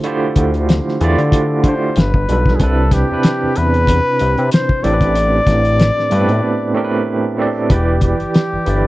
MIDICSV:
0, 0, Header, 1, 5, 480
1, 0, Start_track
1, 0, Tempo, 638298
1, 31, Time_signature, 4, 2, 24, 8
1, 6670, End_track
2, 0, Start_track
2, 0, Title_t, "Flugelhorn"
2, 0, Program_c, 0, 56
2, 1263, Note_on_c, 0, 72, 84
2, 1502, Note_on_c, 0, 71, 84
2, 1513, Note_off_c, 0, 72, 0
2, 1923, Note_on_c, 0, 68, 53
2, 1934, Note_off_c, 0, 71, 0
2, 1968, Note_on_c, 0, 69, 89
2, 1979, Note_off_c, 0, 68, 0
2, 2206, Note_on_c, 0, 67, 89
2, 2218, Note_off_c, 0, 69, 0
2, 2686, Note_on_c, 0, 71, 119
2, 2697, Note_off_c, 0, 67, 0
2, 3399, Note_off_c, 0, 71, 0
2, 3404, Note_on_c, 0, 72, 94
2, 3637, Note_on_c, 0, 74, 118
2, 3648, Note_off_c, 0, 72, 0
2, 5314, Note_off_c, 0, 74, 0
2, 5798, Note_on_c, 0, 67, 75
2, 6018, Note_off_c, 0, 67, 0
2, 6040, Note_on_c, 0, 67, 89
2, 6670, Note_off_c, 0, 67, 0
2, 6670, End_track
3, 0, Start_track
3, 0, Title_t, "Tine electric piano"
3, 0, Program_c, 1, 4
3, 0, Control_c, 1, 64, 127
3, 0, Note_on_c, 1, 67, 76
3, 0, Note_on_c, 1, 72, 88
3, 25, Note_on_c, 1, 50, 96
3, 32, Note_on_c, 1, 57, 89
3, 38, Note_on_c, 1, 64, 92
3, 45, Note_on_c, 1, 65, 90
3, 48, Note_off_c, 1, 67, 0
3, 48, Note_on_c, 1, 67, 85
3, 56, Note_off_c, 1, 72, 0
3, 56, Note_on_c, 1, 72, 99
3, 620, Note_off_c, 1, 50, 0
3, 624, Note_off_c, 1, 57, 0
3, 627, Note_off_c, 1, 64, 0
3, 630, Note_off_c, 1, 65, 0
3, 632, Note_off_c, 1, 67, 0
3, 636, Note_off_c, 1, 72, 0
3, 752, Note_on_c, 1, 50, 76
3, 757, Note_on_c, 1, 57, 85
3, 764, Note_on_c, 1, 64, 82
3, 772, Note_on_c, 1, 65, 82
3, 778, Note_on_c, 1, 67, 78
3, 783, Note_on_c, 1, 74, 103
3, 1149, Note_off_c, 1, 50, 0
3, 1152, Note_off_c, 1, 57, 0
3, 1156, Note_off_c, 1, 64, 0
3, 1160, Note_off_c, 1, 65, 0
3, 1162, Note_off_c, 1, 67, 0
3, 1165, Note_off_c, 1, 74, 0
3, 1237, Note_on_c, 1, 50, 78
3, 1242, Note_on_c, 1, 57, 60
3, 1249, Note_on_c, 1, 64, 58
3, 1254, Note_on_c, 1, 65, 64
3, 1263, Note_on_c, 1, 67, 58
3, 1268, Note_on_c, 1, 72, 77
3, 1474, Note_off_c, 1, 50, 0
3, 1476, Note_off_c, 1, 57, 0
3, 1480, Note_off_c, 1, 64, 0
3, 1481, Control_c, 1, 64, 0
3, 1483, Note_off_c, 1, 65, 0
3, 1487, Note_off_c, 1, 67, 0
3, 1489, Note_off_c, 1, 72, 0
3, 1612, Control_c, 1, 64, 127
3, 1718, Note_on_c, 1, 55, 73
3, 1724, Note_on_c, 1, 62, 67
3, 1734, Note_on_c, 1, 65, 61
3, 1743, Note_on_c, 1, 69, 66
3, 1749, Note_on_c, 1, 71, 80
3, 1913, Note_off_c, 1, 55, 0
3, 1917, Note_off_c, 1, 62, 0
3, 1921, Note_off_c, 1, 65, 0
3, 1926, Note_off_c, 1, 69, 0
3, 1929, Note_off_c, 1, 71, 0
3, 1952, Note_on_c, 1, 48, 78
3, 1958, Note_on_c, 1, 60, 71
3, 1961, Control_c, 1, 64, 0
3, 1966, Note_on_c, 1, 62, 76
3, 1975, Note_on_c, 1, 64, 77
3, 1982, Note_on_c, 1, 71, 97
3, 2088, Control_c, 1, 64, 127
3, 2248, Note_off_c, 1, 48, 0
3, 2251, Note_off_c, 1, 60, 0
3, 2254, Note_off_c, 1, 62, 0
3, 2259, Note_off_c, 1, 64, 0
3, 2262, Note_off_c, 1, 71, 0
3, 2325, Note_on_c, 1, 48, 65
3, 2337, Note_on_c, 1, 60, 65
3, 2344, Note_on_c, 1, 62, 67
3, 2351, Note_on_c, 1, 64, 65
3, 2359, Note_on_c, 1, 71, 83
3, 3092, Note_off_c, 1, 48, 0
3, 3098, Note_off_c, 1, 60, 0
3, 3102, Note_off_c, 1, 62, 0
3, 3105, Note_off_c, 1, 64, 0
3, 3109, Note_off_c, 1, 71, 0
3, 3628, Note_on_c, 1, 45, 80
3, 3634, Note_on_c, 1, 57, 74
3, 3640, Note_on_c, 1, 60, 72
3, 3642, Control_c, 1, 64, 0
3, 3648, Note_on_c, 1, 62, 71
3, 3652, Note_on_c, 1, 67, 79
3, 3660, Note_on_c, 1, 69, 65
3, 3700, Note_off_c, 1, 69, 0
3, 3710, Note_on_c, 1, 71, 87
3, 3777, Control_c, 1, 64, 127
3, 4409, Note_off_c, 1, 45, 0
3, 4412, Note_off_c, 1, 57, 0
3, 4416, Note_off_c, 1, 60, 0
3, 4419, Note_off_c, 1, 62, 0
3, 4421, Note_off_c, 1, 67, 0
3, 4450, Note_off_c, 1, 71, 0
3, 4583, Note_on_c, 1, 45, 79
3, 4589, Note_on_c, 1, 57, 80
3, 4594, Note_on_c, 1, 59, 67
3, 4601, Note_on_c, 1, 62, 82
3, 4608, Note_on_c, 1, 67, 74
3, 4614, Note_on_c, 1, 71, 99
3, 4645, Note_on_c, 1, 60, 75
3, 4647, Note_off_c, 1, 59, 0
3, 4985, Note_off_c, 1, 45, 0
3, 4988, Note_off_c, 1, 57, 0
3, 4994, Note_off_c, 1, 62, 0
3, 4997, Note_off_c, 1, 67, 0
3, 5001, Note_off_c, 1, 71, 0
3, 5016, Note_off_c, 1, 60, 0
3, 5068, Note_on_c, 1, 45, 91
3, 5072, Note_on_c, 1, 57, 80
3, 5078, Note_on_c, 1, 60, 67
3, 5083, Note_on_c, 1, 62, 72
3, 5091, Note_on_c, 1, 67, 79
3, 5098, Note_on_c, 1, 70, 72
3, 5139, Note_off_c, 1, 70, 0
3, 5146, Note_on_c, 1, 71, 80
3, 5468, Note_off_c, 1, 45, 0
3, 5470, Note_off_c, 1, 57, 0
3, 5472, Note_off_c, 1, 60, 0
3, 5475, Note_off_c, 1, 62, 0
3, 5479, Note_off_c, 1, 67, 0
3, 5507, Note_off_c, 1, 71, 0
3, 5547, Note_on_c, 1, 45, 74
3, 5551, Note_on_c, 1, 57, 75
3, 5557, Note_on_c, 1, 60, 72
3, 5563, Note_on_c, 1, 62, 70
3, 5572, Note_on_c, 1, 67, 69
3, 5578, Note_on_c, 1, 74, 84
3, 5748, Note_off_c, 1, 45, 0
3, 5750, Note_off_c, 1, 57, 0
3, 5753, Note_off_c, 1, 60, 0
3, 5756, Note_off_c, 1, 62, 0
3, 5761, Note_off_c, 1, 67, 0
3, 5763, Note_off_c, 1, 74, 0
3, 5787, Note_on_c, 1, 52, 82
3, 5793, Note_on_c, 1, 64, 71
3, 5800, Control_c, 1, 64, 0
3, 5801, Note_on_c, 1, 67, 69
3, 5808, Note_on_c, 1, 71, 68
3, 5819, Note_on_c, 1, 74, 83
3, 5918, Control_c, 1, 64, 127
3, 6381, Note_off_c, 1, 52, 0
3, 6384, Note_off_c, 1, 64, 0
3, 6388, Note_off_c, 1, 67, 0
3, 6392, Note_off_c, 1, 71, 0
3, 6397, Note_off_c, 1, 74, 0
3, 6505, Note_on_c, 1, 52, 70
3, 6513, Note_on_c, 1, 64, 69
3, 6522, Note_on_c, 1, 67, 69
3, 6530, Note_on_c, 1, 71, 62
3, 6537, Note_on_c, 1, 74, 78
3, 6670, Note_off_c, 1, 52, 0
3, 6670, Note_off_c, 1, 64, 0
3, 6670, Note_off_c, 1, 67, 0
3, 6670, Note_off_c, 1, 71, 0
3, 6670, Note_off_c, 1, 74, 0
3, 6670, End_track
4, 0, Start_track
4, 0, Title_t, "Analog synth bass"
4, 0, Program_c, 2, 38
4, 278, Note_on_c, 2, 38, 92
4, 607, Note_off_c, 2, 38, 0
4, 759, Note_on_c, 2, 40, 106
4, 875, Note_off_c, 2, 40, 0
4, 889, Note_on_c, 2, 50, 111
4, 1313, Note_off_c, 2, 50, 0
4, 1479, Note_on_c, 2, 31, 107
4, 1595, Note_off_c, 2, 31, 0
4, 1611, Note_on_c, 2, 31, 83
4, 1702, Note_off_c, 2, 31, 0
4, 1725, Note_on_c, 2, 35, 82
4, 1932, Note_off_c, 2, 35, 0
4, 1957, Note_on_c, 2, 36, 100
4, 2287, Note_off_c, 2, 36, 0
4, 2340, Note_on_c, 2, 40, 46
4, 2378, Note_off_c, 2, 40, 0
4, 2578, Note_on_c, 2, 40, 44
4, 2617, Note_off_c, 2, 40, 0
4, 2689, Note_on_c, 2, 40, 84
4, 3013, Note_off_c, 2, 40, 0
4, 3167, Note_on_c, 2, 36, 88
4, 3279, Note_off_c, 2, 36, 0
4, 3298, Note_on_c, 2, 48, 98
4, 3386, Note_off_c, 2, 48, 0
4, 3645, Note_on_c, 2, 33, 106
4, 4064, Note_off_c, 2, 33, 0
4, 4114, Note_on_c, 2, 33, 85
4, 4445, Note_off_c, 2, 33, 0
4, 4600, Note_on_c, 2, 43, 106
4, 4730, Note_on_c, 2, 45, 108
4, 4741, Note_off_c, 2, 43, 0
4, 4822, Note_off_c, 2, 45, 0
4, 5796, Note_on_c, 2, 28, 93
4, 6126, Note_off_c, 2, 28, 0
4, 6174, Note_on_c, 2, 31, 49
4, 6214, Note_off_c, 2, 31, 0
4, 6411, Note_on_c, 2, 31, 50
4, 6452, Note_off_c, 2, 31, 0
4, 6520, Note_on_c, 2, 31, 97
4, 6670, Note_off_c, 2, 31, 0
4, 6670, End_track
5, 0, Start_track
5, 0, Title_t, "Drums"
5, 27, Note_on_c, 9, 42, 76
5, 103, Note_off_c, 9, 42, 0
5, 268, Note_on_c, 9, 42, 66
5, 271, Note_on_c, 9, 36, 83
5, 343, Note_off_c, 9, 42, 0
5, 346, Note_off_c, 9, 36, 0
5, 406, Note_on_c, 9, 42, 32
5, 481, Note_off_c, 9, 42, 0
5, 518, Note_on_c, 9, 42, 78
5, 526, Note_on_c, 9, 38, 93
5, 593, Note_off_c, 9, 42, 0
5, 601, Note_off_c, 9, 38, 0
5, 664, Note_on_c, 9, 38, 39
5, 739, Note_off_c, 9, 38, 0
5, 757, Note_on_c, 9, 42, 62
5, 832, Note_off_c, 9, 42, 0
5, 891, Note_on_c, 9, 42, 36
5, 967, Note_off_c, 9, 42, 0
5, 994, Note_on_c, 9, 36, 91
5, 1000, Note_on_c, 9, 42, 92
5, 1069, Note_off_c, 9, 36, 0
5, 1075, Note_off_c, 9, 42, 0
5, 1231, Note_on_c, 9, 36, 93
5, 1233, Note_on_c, 9, 42, 71
5, 1307, Note_off_c, 9, 36, 0
5, 1308, Note_off_c, 9, 42, 0
5, 1472, Note_on_c, 9, 42, 69
5, 1491, Note_on_c, 9, 38, 99
5, 1548, Note_off_c, 9, 42, 0
5, 1566, Note_off_c, 9, 38, 0
5, 1609, Note_on_c, 9, 36, 92
5, 1684, Note_off_c, 9, 36, 0
5, 1720, Note_on_c, 9, 42, 68
5, 1795, Note_off_c, 9, 42, 0
5, 1847, Note_on_c, 9, 36, 77
5, 1863, Note_on_c, 9, 38, 32
5, 1922, Note_off_c, 9, 36, 0
5, 1939, Note_off_c, 9, 38, 0
5, 1952, Note_on_c, 9, 42, 69
5, 1953, Note_on_c, 9, 36, 111
5, 2027, Note_off_c, 9, 42, 0
5, 2029, Note_off_c, 9, 36, 0
5, 2191, Note_on_c, 9, 36, 80
5, 2193, Note_on_c, 9, 42, 61
5, 2208, Note_on_c, 9, 38, 30
5, 2267, Note_off_c, 9, 36, 0
5, 2268, Note_off_c, 9, 42, 0
5, 2283, Note_off_c, 9, 38, 0
5, 2431, Note_on_c, 9, 42, 83
5, 2439, Note_on_c, 9, 38, 99
5, 2506, Note_off_c, 9, 42, 0
5, 2515, Note_off_c, 9, 38, 0
5, 2674, Note_on_c, 9, 42, 67
5, 2749, Note_off_c, 9, 42, 0
5, 2813, Note_on_c, 9, 42, 32
5, 2888, Note_off_c, 9, 42, 0
5, 2913, Note_on_c, 9, 36, 83
5, 2920, Note_on_c, 9, 42, 93
5, 2988, Note_off_c, 9, 36, 0
5, 2995, Note_off_c, 9, 42, 0
5, 3154, Note_on_c, 9, 42, 74
5, 3229, Note_off_c, 9, 42, 0
5, 3290, Note_on_c, 9, 42, 31
5, 3366, Note_off_c, 9, 42, 0
5, 3395, Note_on_c, 9, 42, 84
5, 3413, Note_on_c, 9, 38, 107
5, 3470, Note_off_c, 9, 42, 0
5, 3489, Note_off_c, 9, 38, 0
5, 3529, Note_on_c, 9, 36, 87
5, 3604, Note_off_c, 9, 36, 0
5, 3641, Note_on_c, 9, 42, 69
5, 3716, Note_off_c, 9, 42, 0
5, 3766, Note_on_c, 9, 36, 91
5, 3772, Note_on_c, 9, 42, 32
5, 3841, Note_off_c, 9, 36, 0
5, 3848, Note_off_c, 9, 42, 0
5, 3876, Note_on_c, 9, 42, 78
5, 3951, Note_off_c, 9, 42, 0
5, 4111, Note_on_c, 9, 36, 82
5, 4111, Note_on_c, 9, 42, 56
5, 4126, Note_on_c, 9, 38, 31
5, 4186, Note_off_c, 9, 36, 0
5, 4186, Note_off_c, 9, 42, 0
5, 4201, Note_off_c, 9, 38, 0
5, 4248, Note_on_c, 9, 42, 37
5, 4323, Note_off_c, 9, 42, 0
5, 4359, Note_on_c, 9, 42, 76
5, 4367, Note_on_c, 9, 38, 91
5, 4434, Note_off_c, 9, 42, 0
5, 4442, Note_off_c, 9, 38, 0
5, 4504, Note_on_c, 9, 38, 35
5, 4580, Note_off_c, 9, 38, 0
5, 4595, Note_on_c, 9, 42, 67
5, 4670, Note_off_c, 9, 42, 0
5, 4728, Note_on_c, 9, 42, 34
5, 4803, Note_off_c, 9, 42, 0
5, 5790, Note_on_c, 9, 36, 91
5, 5790, Note_on_c, 9, 42, 72
5, 5865, Note_off_c, 9, 42, 0
5, 5866, Note_off_c, 9, 36, 0
5, 6024, Note_on_c, 9, 42, 65
5, 6028, Note_on_c, 9, 36, 82
5, 6099, Note_off_c, 9, 42, 0
5, 6103, Note_off_c, 9, 36, 0
5, 6166, Note_on_c, 9, 42, 33
5, 6241, Note_off_c, 9, 42, 0
5, 6275, Note_on_c, 9, 42, 71
5, 6283, Note_on_c, 9, 38, 94
5, 6350, Note_off_c, 9, 42, 0
5, 6358, Note_off_c, 9, 38, 0
5, 6515, Note_on_c, 9, 42, 69
5, 6590, Note_off_c, 9, 42, 0
5, 6670, End_track
0, 0, End_of_file